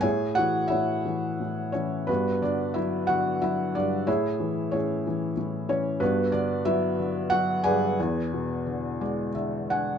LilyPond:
<<
  \new Staff \with { instrumentName = "Felt piano" } { \time 3/4 \key a \major \tempo 4 = 91 <gis' cis'' e'' gis''>8 <fis' fis''>8 <e' cis'' e''>4. <cis' cis''>8 | <b d' fis' b'>8 <d' d''>8 <e' e''>8 <fis' fis''>8 <e' e''>8 <d' d''>8 | <e' gis' cis'' e''>4 <cis' gis' cis''>4 r8 <cis' cis''>8 | <b d' fis' b'>8 <d' d''>8 <e' b' e''>4 <fis' fis''>8 <gis' b' d'' gis''>8~ |
<gis' b' d'' gis''>2 r8 fis''8 | }
  \new Staff \with { instrumentName = "Felt piano" } { \clef bass \time 3/4 \key a \major a,8 e8 a,8 e8 a,8 e8 | g,8 d8 fis8 d8 fis8 g,8 | a,8 e8 a,8 e8 a,8 e8 | g,8 d8 fis8 d8 fis8 g,8 |
e,8 b,8 d8 <gis d''>8 <d e''>8 <d' gis''>8 | }
>>